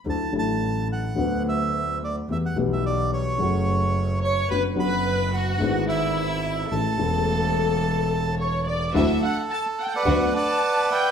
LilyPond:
<<
  \new Staff \with { instrumentName = "Bandoneon" } { \time 4/4 \key d \major \tempo 4 = 108 << { a''8 a''4 fis''4 e''4 d''8 | e''16 fis''8 e''16 d''8 cis''2 cis'''8 | b''8 b''4 fis''4 e''4. | a''2. cis''8 d''8 |
e''8 fis''8 a''8 fis''32 g''32 fis''8. a''4 g''8 | } \\ { r1 | r1 | r1 | r1 |
a'4.~ a'16 <b' d''>8. <d'' fis''>4 <b' e''>8 | } >> }
  \new Staff \with { instrumentName = "Violin section" } { \time 4/4 \key d \major r1 | r2. r8 cis''8 | b'8 b'4 fis'4 e'4. | a'2. cis''8 d''8 |
e''8 fis''8 a''8 fis''32 g''32 fis''8. a''4 g''8 | }
  \new Staff \with { instrumentName = "String section" } { \time 4/4 \key d \major r1 | r1 | r1 | r1 |
<d' e' fis'>8 r4. <b d' fis'>8 r4. | }
  \new Staff \with { instrumentName = "Grand piano" } { \clef bass \time 4/4 \key d \major <d, d fis a e'>8 <a,, a, d fis a e'>4. <d, d fis b fis'>2 | <e, e g b g'>8 <b,, b, e g b g'>4. <fis, cis fis a fis'>2 | <fis, d fis b fis'>8 <fis, d fis b fis'>4. <gis,, gis, d gis b e'>2 | <a,, a, cis e a e'>8 <e,, e, cis e a e'>2.~ <e,, e, cis e a e'>8 |
<d, d fis a e'>8 r4. <d, d fis b fis'>8 r4. | }
  \new Staff \with { instrumentName = "Double bass" } { \clef bass \time 4/4 \key d \major d,8 a,,4. d,2 | e,8 b,,4. fis,,2 | fis,,8 fis,,4. gis,,2 | a,,8 e,,2.~ e,,8 |
d,8 r4. d,8 r4. | }
>>